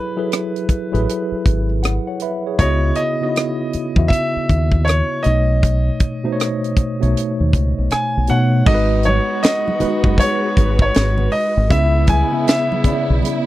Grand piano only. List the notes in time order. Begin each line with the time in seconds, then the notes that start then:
Already playing: B4
2.59 C#5
2.96 D#5
4.08 E5
4.85 C#5
5.23 D#5
7.92 G#5
8.30 F#5
8.67 D#5
9.05 C#5
9.43 D#5
10.19 C#5
10.82 C#5
11.32 D#5
11.70 E5
12.09 G#5
12.48 E5